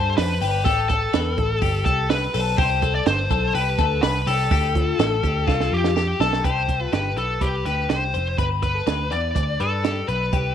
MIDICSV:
0, 0, Header, 1, 5, 480
1, 0, Start_track
1, 0, Tempo, 483481
1, 653, Time_signature, 4, 2, 24, 8
1, 10471, End_track
2, 0, Start_track
2, 0, Title_t, "Lead electric guitar"
2, 0, Program_c, 0, 29
2, 0, Note_on_c, 0, 72, 97
2, 138, Note_off_c, 0, 72, 0
2, 169, Note_on_c, 0, 71, 85
2, 616, Note_off_c, 0, 71, 0
2, 641, Note_on_c, 0, 69, 91
2, 869, Note_off_c, 0, 69, 0
2, 883, Note_on_c, 0, 69, 99
2, 1827, Note_off_c, 0, 69, 0
2, 1839, Note_on_c, 0, 69, 78
2, 2064, Note_off_c, 0, 69, 0
2, 2082, Note_on_c, 0, 71, 90
2, 2528, Note_off_c, 0, 71, 0
2, 2561, Note_on_c, 0, 72, 96
2, 2925, Note_off_c, 0, 72, 0
2, 2929, Note_on_c, 0, 74, 82
2, 3046, Note_off_c, 0, 74, 0
2, 3050, Note_on_c, 0, 72, 78
2, 3519, Note_off_c, 0, 72, 0
2, 3523, Note_on_c, 0, 71, 93
2, 3981, Note_off_c, 0, 71, 0
2, 3993, Note_on_c, 0, 71, 90
2, 4217, Note_off_c, 0, 71, 0
2, 4242, Note_on_c, 0, 69, 84
2, 5694, Note_on_c, 0, 67, 82
2, 5878, Note_off_c, 0, 69, 0
2, 6132, Note_off_c, 0, 67, 0
2, 6163, Note_on_c, 0, 69, 84
2, 6383, Note_off_c, 0, 69, 0
2, 6407, Note_on_c, 0, 72, 94
2, 6774, Note_off_c, 0, 72, 0
2, 6774, Note_on_c, 0, 71, 94
2, 6884, Note_off_c, 0, 71, 0
2, 6888, Note_on_c, 0, 71, 83
2, 7123, Note_off_c, 0, 71, 0
2, 7127, Note_on_c, 0, 69, 76
2, 7363, Note_on_c, 0, 67, 84
2, 7370, Note_off_c, 0, 69, 0
2, 7585, Note_off_c, 0, 67, 0
2, 7600, Note_on_c, 0, 71, 82
2, 7841, Note_off_c, 0, 71, 0
2, 7845, Note_on_c, 0, 72, 88
2, 8292, Note_off_c, 0, 72, 0
2, 8325, Note_on_c, 0, 71, 105
2, 8390, Note_off_c, 0, 71, 0
2, 8567, Note_on_c, 0, 71, 96
2, 9055, Note_on_c, 0, 74, 110
2, 9063, Note_off_c, 0, 71, 0
2, 9534, Note_on_c, 0, 69, 90
2, 9548, Note_off_c, 0, 74, 0
2, 9982, Note_off_c, 0, 69, 0
2, 10014, Note_on_c, 0, 71, 91
2, 10471, Note_off_c, 0, 71, 0
2, 10471, End_track
3, 0, Start_track
3, 0, Title_t, "Clean electric guitar"
3, 0, Program_c, 1, 27
3, 0, Note_on_c, 1, 69, 85
3, 172, Note_off_c, 1, 69, 0
3, 176, Note_on_c, 1, 72, 77
3, 409, Note_off_c, 1, 72, 0
3, 413, Note_on_c, 1, 67, 88
3, 637, Note_off_c, 1, 67, 0
3, 649, Note_on_c, 1, 67, 120
3, 889, Note_off_c, 1, 67, 0
3, 889, Note_on_c, 1, 69, 82
3, 1122, Note_off_c, 1, 69, 0
3, 1126, Note_on_c, 1, 71, 82
3, 1366, Note_off_c, 1, 71, 0
3, 1366, Note_on_c, 1, 69, 75
3, 1606, Note_off_c, 1, 69, 0
3, 1607, Note_on_c, 1, 67, 84
3, 2056, Note_off_c, 1, 67, 0
3, 2083, Note_on_c, 1, 71, 86
3, 2320, Note_off_c, 1, 71, 0
3, 2324, Note_on_c, 1, 69, 87
3, 2563, Note_off_c, 1, 69, 0
3, 2565, Note_on_c, 1, 67, 98
3, 2803, Note_off_c, 1, 67, 0
3, 2806, Note_on_c, 1, 69, 82
3, 3044, Note_off_c, 1, 69, 0
3, 3044, Note_on_c, 1, 71, 82
3, 3280, Note_off_c, 1, 71, 0
3, 3284, Note_on_c, 1, 69, 83
3, 3521, Note_off_c, 1, 69, 0
3, 3523, Note_on_c, 1, 67, 78
3, 3760, Note_off_c, 1, 67, 0
3, 3760, Note_on_c, 1, 69, 96
3, 3996, Note_off_c, 1, 69, 0
3, 4000, Note_on_c, 1, 71, 87
3, 4238, Note_off_c, 1, 71, 0
3, 4241, Note_on_c, 1, 67, 78
3, 4470, Note_off_c, 1, 67, 0
3, 4482, Note_on_c, 1, 67, 108
3, 4718, Note_off_c, 1, 67, 0
3, 4718, Note_on_c, 1, 65, 75
3, 4956, Note_off_c, 1, 65, 0
3, 4957, Note_on_c, 1, 69, 89
3, 5196, Note_off_c, 1, 69, 0
3, 5196, Note_on_c, 1, 67, 71
3, 5431, Note_off_c, 1, 67, 0
3, 5434, Note_on_c, 1, 65, 86
3, 5886, Note_off_c, 1, 65, 0
3, 5916, Note_on_c, 1, 67, 77
3, 6156, Note_off_c, 1, 67, 0
3, 6158, Note_on_c, 1, 69, 89
3, 6397, Note_off_c, 1, 69, 0
3, 6397, Note_on_c, 1, 67, 91
3, 6757, Note_off_c, 1, 67, 0
3, 6757, Note_on_c, 1, 65, 63
3, 6873, Note_off_c, 1, 65, 0
3, 6877, Note_on_c, 1, 67, 71
3, 7118, Note_off_c, 1, 67, 0
3, 7120, Note_on_c, 1, 71, 71
3, 7346, Note_off_c, 1, 71, 0
3, 7358, Note_on_c, 1, 71, 69
3, 7599, Note_off_c, 1, 71, 0
3, 7605, Note_on_c, 1, 67, 70
3, 8056, Note_off_c, 1, 67, 0
3, 8081, Note_on_c, 1, 72, 79
3, 8320, Note_off_c, 1, 72, 0
3, 8324, Note_on_c, 1, 71, 102
3, 8684, Note_off_c, 1, 71, 0
3, 8684, Note_on_c, 1, 69, 63
3, 8799, Note_off_c, 1, 69, 0
3, 8803, Note_on_c, 1, 71, 90
3, 9039, Note_off_c, 1, 71, 0
3, 9043, Note_on_c, 1, 74, 76
3, 9271, Note_off_c, 1, 74, 0
3, 9283, Note_on_c, 1, 74, 78
3, 9526, Note_off_c, 1, 74, 0
3, 9530, Note_on_c, 1, 71, 74
3, 9768, Note_on_c, 1, 67, 70
3, 9772, Note_off_c, 1, 71, 0
3, 10011, Note_off_c, 1, 67, 0
3, 10011, Note_on_c, 1, 71, 77
3, 10254, Note_off_c, 1, 71, 0
3, 10255, Note_on_c, 1, 67, 99
3, 10471, Note_off_c, 1, 67, 0
3, 10471, End_track
4, 0, Start_track
4, 0, Title_t, "Picked electric bass"
4, 0, Program_c, 2, 34
4, 0, Note_on_c, 2, 43, 102
4, 138, Note_off_c, 2, 43, 0
4, 177, Note_on_c, 2, 41, 100
4, 379, Note_off_c, 2, 41, 0
4, 413, Note_on_c, 2, 31, 92
4, 653, Note_off_c, 2, 31, 0
4, 653, Note_on_c, 2, 33, 109
4, 1059, Note_off_c, 2, 33, 0
4, 1134, Note_on_c, 2, 40, 102
4, 1335, Note_off_c, 2, 40, 0
4, 1369, Note_on_c, 2, 33, 99
4, 1572, Note_off_c, 2, 33, 0
4, 1606, Note_on_c, 2, 31, 97
4, 1810, Note_off_c, 2, 31, 0
4, 1845, Note_on_c, 2, 36, 93
4, 2251, Note_off_c, 2, 36, 0
4, 2329, Note_on_c, 2, 35, 94
4, 2530, Note_off_c, 2, 35, 0
4, 2564, Note_on_c, 2, 36, 127
4, 2970, Note_off_c, 2, 36, 0
4, 3041, Note_on_c, 2, 31, 92
4, 3244, Note_off_c, 2, 31, 0
4, 3283, Note_on_c, 2, 35, 112
4, 3485, Note_off_c, 2, 35, 0
4, 3520, Note_on_c, 2, 36, 87
4, 3722, Note_off_c, 2, 36, 0
4, 3758, Note_on_c, 2, 38, 92
4, 3961, Note_off_c, 2, 38, 0
4, 4003, Note_on_c, 2, 36, 104
4, 4204, Note_off_c, 2, 36, 0
4, 4238, Note_on_c, 2, 36, 100
4, 4441, Note_off_c, 2, 36, 0
4, 4479, Note_on_c, 2, 38, 101
4, 4885, Note_off_c, 2, 38, 0
4, 4957, Note_on_c, 2, 33, 101
4, 5160, Note_off_c, 2, 33, 0
4, 5197, Note_on_c, 2, 38, 104
4, 5400, Note_off_c, 2, 38, 0
4, 5439, Note_on_c, 2, 36, 79
4, 5641, Note_off_c, 2, 36, 0
4, 5677, Note_on_c, 2, 41, 87
4, 6084, Note_off_c, 2, 41, 0
4, 6155, Note_on_c, 2, 35, 100
4, 6359, Note_off_c, 2, 35, 0
4, 6397, Note_on_c, 2, 36, 99
4, 6805, Note_off_c, 2, 36, 0
4, 6879, Note_on_c, 2, 31, 85
4, 7119, Note_off_c, 2, 31, 0
4, 7119, Note_on_c, 2, 35, 81
4, 7323, Note_off_c, 2, 35, 0
4, 7358, Note_on_c, 2, 36, 68
4, 7563, Note_off_c, 2, 36, 0
4, 7599, Note_on_c, 2, 38, 80
4, 7804, Note_off_c, 2, 38, 0
4, 7844, Note_on_c, 2, 36, 84
4, 8084, Note_on_c, 2, 29, 88
4, 8099, Note_off_c, 2, 36, 0
4, 8288, Note_off_c, 2, 29, 0
4, 8323, Note_on_c, 2, 31, 96
4, 8734, Note_off_c, 2, 31, 0
4, 8805, Note_on_c, 2, 38, 90
4, 9043, Note_off_c, 2, 38, 0
4, 9043, Note_on_c, 2, 40, 95
4, 9250, Note_off_c, 2, 40, 0
4, 9290, Note_on_c, 2, 38, 76
4, 9495, Note_off_c, 2, 38, 0
4, 9529, Note_on_c, 2, 43, 82
4, 9940, Note_off_c, 2, 43, 0
4, 10012, Note_on_c, 2, 35, 92
4, 10218, Note_off_c, 2, 35, 0
4, 10255, Note_on_c, 2, 36, 102
4, 10471, Note_off_c, 2, 36, 0
4, 10471, End_track
5, 0, Start_track
5, 0, Title_t, "Drums"
5, 176, Note_on_c, 9, 44, 68
5, 176, Note_on_c, 9, 46, 85
5, 177, Note_on_c, 9, 38, 103
5, 275, Note_off_c, 9, 44, 0
5, 276, Note_off_c, 9, 38, 0
5, 276, Note_off_c, 9, 46, 0
5, 415, Note_on_c, 9, 44, 64
5, 416, Note_on_c, 9, 46, 64
5, 514, Note_off_c, 9, 44, 0
5, 516, Note_off_c, 9, 46, 0
5, 655, Note_on_c, 9, 36, 114
5, 656, Note_on_c, 9, 44, 62
5, 657, Note_on_c, 9, 46, 88
5, 754, Note_off_c, 9, 36, 0
5, 756, Note_off_c, 9, 44, 0
5, 756, Note_off_c, 9, 46, 0
5, 889, Note_on_c, 9, 46, 73
5, 892, Note_on_c, 9, 36, 90
5, 892, Note_on_c, 9, 44, 72
5, 989, Note_off_c, 9, 46, 0
5, 991, Note_off_c, 9, 44, 0
5, 992, Note_off_c, 9, 36, 0
5, 1127, Note_on_c, 9, 46, 90
5, 1129, Note_on_c, 9, 44, 67
5, 1131, Note_on_c, 9, 38, 112
5, 1226, Note_off_c, 9, 46, 0
5, 1228, Note_off_c, 9, 44, 0
5, 1231, Note_off_c, 9, 38, 0
5, 1367, Note_on_c, 9, 46, 60
5, 1369, Note_on_c, 9, 44, 57
5, 1370, Note_on_c, 9, 36, 89
5, 1466, Note_off_c, 9, 46, 0
5, 1468, Note_off_c, 9, 44, 0
5, 1469, Note_off_c, 9, 36, 0
5, 1605, Note_on_c, 9, 44, 70
5, 1606, Note_on_c, 9, 46, 100
5, 1607, Note_on_c, 9, 36, 90
5, 1704, Note_off_c, 9, 44, 0
5, 1705, Note_off_c, 9, 46, 0
5, 1707, Note_off_c, 9, 36, 0
5, 1845, Note_on_c, 9, 36, 97
5, 1846, Note_on_c, 9, 44, 65
5, 1846, Note_on_c, 9, 46, 59
5, 1945, Note_off_c, 9, 36, 0
5, 1945, Note_off_c, 9, 44, 0
5, 1945, Note_off_c, 9, 46, 0
5, 2085, Note_on_c, 9, 44, 66
5, 2085, Note_on_c, 9, 46, 79
5, 2086, Note_on_c, 9, 38, 99
5, 2184, Note_off_c, 9, 44, 0
5, 2185, Note_off_c, 9, 38, 0
5, 2185, Note_off_c, 9, 46, 0
5, 2323, Note_on_c, 9, 44, 59
5, 2324, Note_on_c, 9, 46, 66
5, 2422, Note_off_c, 9, 44, 0
5, 2423, Note_off_c, 9, 46, 0
5, 2563, Note_on_c, 9, 44, 74
5, 2563, Note_on_c, 9, 46, 83
5, 2564, Note_on_c, 9, 36, 126
5, 2662, Note_off_c, 9, 44, 0
5, 2662, Note_off_c, 9, 46, 0
5, 2663, Note_off_c, 9, 36, 0
5, 2798, Note_on_c, 9, 46, 72
5, 2801, Note_on_c, 9, 44, 66
5, 2803, Note_on_c, 9, 36, 91
5, 2898, Note_off_c, 9, 46, 0
5, 2900, Note_off_c, 9, 44, 0
5, 2902, Note_off_c, 9, 36, 0
5, 3039, Note_on_c, 9, 46, 80
5, 3041, Note_on_c, 9, 44, 69
5, 3044, Note_on_c, 9, 38, 125
5, 3138, Note_off_c, 9, 46, 0
5, 3140, Note_off_c, 9, 44, 0
5, 3143, Note_off_c, 9, 38, 0
5, 3280, Note_on_c, 9, 46, 55
5, 3282, Note_on_c, 9, 36, 84
5, 3282, Note_on_c, 9, 44, 61
5, 3379, Note_off_c, 9, 46, 0
5, 3381, Note_off_c, 9, 44, 0
5, 3382, Note_off_c, 9, 36, 0
5, 3523, Note_on_c, 9, 44, 67
5, 3524, Note_on_c, 9, 46, 99
5, 3622, Note_off_c, 9, 44, 0
5, 3623, Note_off_c, 9, 46, 0
5, 3759, Note_on_c, 9, 36, 96
5, 3759, Note_on_c, 9, 44, 66
5, 3759, Note_on_c, 9, 46, 67
5, 3766, Note_on_c, 9, 38, 37
5, 3858, Note_off_c, 9, 36, 0
5, 3859, Note_off_c, 9, 44, 0
5, 3859, Note_off_c, 9, 46, 0
5, 3865, Note_off_c, 9, 38, 0
5, 3999, Note_on_c, 9, 38, 108
5, 3999, Note_on_c, 9, 44, 69
5, 3999, Note_on_c, 9, 46, 96
5, 4098, Note_off_c, 9, 44, 0
5, 4098, Note_off_c, 9, 46, 0
5, 4099, Note_off_c, 9, 38, 0
5, 4241, Note_on_c, 9, 44, 57
5, 4242, Note_on_c, 9, 46, 69
5, 4340, Note_off_c, 9, 44, 0
5, 4341, Note_off_c, 9, 46, 0
5, 4478, Note_on_c, 9, 36, 127
5, 4479, Note_on_c, 9, 44, 64
5, 4480, Note_on_c, 9, 46, 93
5, 4578, Note_off_c, 9, 36, 0
5, 4579, Note_off_c, 9, 44, 0
5, 4579, Note_off_c, 9, 46, 0
5, 4719, Note_on_c, 9, 36, 82
5, 4719, Note_on_c, 9, 46, 72
5, 4722, Note_on_c, 9, 44, 73
5, 4818, Note_off_c, 9, 36, 0
5, 4818, Note_off_c, 9, 46, 0
5, 4821, Note_off_c, 9, 44, 0
5, 4958, Note_on_c, 9, 46, 93
5, 4960, Note_on_c, 9, 44, 63
5, 4963, Note_on_c, 9, 38, 121
5, 5057, Note_off_c, 9, 46, 0
5, 5059, Note_off_c, 9, 44, 0
5, 5062, Note_off_c, 9, 38, 0
5, 5198, Note_on_c, 9, 36, 81
5, 5198, Note_on_c, 9, 46, 53
5, 5200, Note_on_c, 9, 44, 58
5, 5297, Note_off_c, 9, 36, 0
5, 5297, Note_off_c, 9, 46, 0
5, 5299, Note_off_c, 9, 44, 0
5, 5437, Note_on_c, 9, 36, 93
5, 5447, Note_on_c, 9, 38, 64
5, 5536, Note_off_c, 9, 36, 0
5, 5546, Note_off_c, 9, 38, 0
5, 5565, Note_on_c, 9, 38, 64
5, 5664, Note_off_c, 9, 38, 0
5, 5802, Note_on_c, 9, 38, 68
5, 5901, Note_off_c, 9, 38, 0
5, 5924, Note_on_c, 9, 38, 84
5, 6023, Note_off_c, 9, 38, 0
5, 6164, Note_on_c, 9, 38, 97
5, 6264, Note_off_c, 9, 38, 0
5, 6286, Note_on_c, 9, 38, 91
5, 6385, Note_off_c, 9, 38, 0
5, 6398, Note_on_c, 9, 36, 101
5, 6402, Note_on_c, 9, 42, 82
5, 6497, Note_off_c, 9, 36, 0
5, 6501, Note_off_c, 9, 42, 0
5, 6638, Note_on_c, 9, 36, 75
5, 6640, Note_on_c, 9, 42, 64
5, 6737, Note_off_c, 9, 36, 0
5, 6739, Note_off_c, 9, 42, 0
5, 6879, Note_on_c, 9, 42, 75
5, 6883, Note_on_c, 9, 38, 109
5, 6978, Note_off_c, 9, 42, 0
5, 6983, Note_off_c, 9, 38, 0
5, 7120, Note_on_c, 9, 42, 50
5, 7219, Note_off_c, 9, 42, 0
5, 7359, Note_on_c, 9, 36, 85
5, 7362, Note_on_c, 9, 42, 85
5, 7458, Note_off_c, 9, 36, 0
5, 7461, Note_off_c, 9, 42, 0
5, 7602, Note_on_c, 9, 42, 56
5, 7609, Note_on_c, 9, 38, 33
5, 7702, Note_off_c, 9, 42, 0
5, 7708, Note_off_c, 9, 38, 0
5, 7841, Note_on_c, 9, 38, 94
5, 7841, Note_on_c, 9, 42, 79
5, 7940, Note_off_c, 9, 38, 0
5, 7940, Note_off_c, 9, 42, 0
5, 8087, Note_on_c, 9, 42, 58
5, 8186, Note_off_c, 9, 42, 0
5, 8324, Note_on_c, 9, 36, 109
5, 8325, Note_on_c, 9, 42, 89
5, 8423, Note_off_c, 9, 36, 0
5, 8424, Note_off_c, 9, 42, 0
5, 8563, Note_on_c, 9, 42, 67
5, 8565, Note_on_c, 9, 36, 74
5, 8662, Note_off_c, 9, 42, 0
5, 8664, Note_off_c, 9, 36, 0
5, 8807, Note_on_c, 9, 42, 81
5, 8812, Note_on_c, 9, 38, 99
5, 8906, Note_off_c, 9, 42, 0
5, 8911, Note_off_c, 9, 38, 0
5, 9051, Note_on_c, 9, 42, 53
5, 9150, Note_off_c, 9, 42, 0
5, 9289, Note_on_c, 9, 36, 96
5, 9291, Note_on_c, 9, 42, 94
5, 9388, Note_off_c, 9, 36, 0
5, 9391, Note_off_c, 9, 42, 0
5, 9532, Note_on_c, 9, 42, 58
5, 9631, Note_off_c, 9, 42, 0
5, 9774, Note_on_c, 9, 42, 82
5, 9775, Note_on_c, 9, 38, 102
5, 9873, Note_off_c, 9, 42, 0
5, 9874, Note_off_c, 9, 38, 0
5, 10012, Note_on_c, 9, 42, 64
5, 10112, Note_off_c, 9, 42, 0
5, 10254, Note_on_c, 9, 42, 85
5, 10255, Note_on_c, 9, 36, 113
5, 10353, Note_off_c, 9, 42, 0
5, 10354, Note_off_c, 9, 36, 0
5, 10471, End_track
0, 0, End_of_file